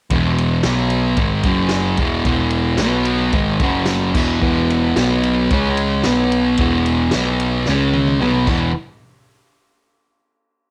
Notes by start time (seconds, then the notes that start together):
0.10 E1 E2 B2 E3, kick, ride
0.38 ride
0.63 B1 B2 F#3 B3, snare, ride
0.90 ride
1.17 G#1 G#2 D#3 G#3, kick, ride
1.43 F#1 F#2 C#3 F#3, kick, ride
1.69 snare, ride
1.97 E1 E2 B2 E3, kick, ride
2.24 E1 E2 B2 E3, kick, ride
2.50 ride
2.77 B1 B2 F#3, snare, ride
2.82 B3
3.05 ride
3.32 G#1 G#2 D#3 G#3, kick, ride
3.60 F#1 F#2 C#3 F#3, kick, ride
3.85 snare, ride
4.14 E1 E2 B2 E3, kick, crash
4.41 E1 E2 B2 E3, kick
4.70 ride
4.96 B1 B2 F#3 B3, snare, ride
5.23 ride
5.50 C#2 C#3 G#3 C#4, kick, ride
5.77 ride
6.03 B1 B2 F#3 B3, snare, ride
6.32 ride
6.57 E1 E2 B2 E3, kick, ride
6.86 ride
7.11 B1 B2 F#3, snare, ride
7.15 B3
7.40 ride
7.65 C#2 C#3, snare
7.70 G#3 C#4
7.93 high tom
8.07 high tom
8.20 B1 B2 F#3 B3, mid tom
8.47 E1 E2 B2 E3, kick, crash